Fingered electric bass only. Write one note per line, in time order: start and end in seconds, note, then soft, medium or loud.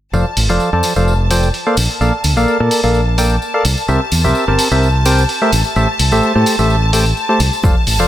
0.13 0.22 F1 medium
0.37 0.50 A1 medium
0.50 0.57 F1 medium
0.73 0.81 F2 medium
0.96 1.49 F1 medium
1.77 1.86 A#1 medium
2.01 2.10 A#1 medium
2.24 2.37 D2 medium
2.37 2.45 A#1 medium
2.60 2.68 A#2 medium
2.84 3.37 A#1 medium
3.65 3.74 C2 medium
3.89 3.98 C2 medium
4.12 4.26 E2 medium
4.25 4.32 C2 medium
4.48 4.56 G1 medium
4.71 5.24 C2 medium
5.53 5.62 A1 medium
5.76 5.85 A1 medium
6.00 6.12 C2 medium
6.12 6.20 A1 medium
6.36 6.43 A2 medium
6.59 7.12 A1 medium
7.40 7.49 C2 medium
7.64 7.73 F1 medium
7.87 8.00 A1 medium
8.00 8.07 F1 medium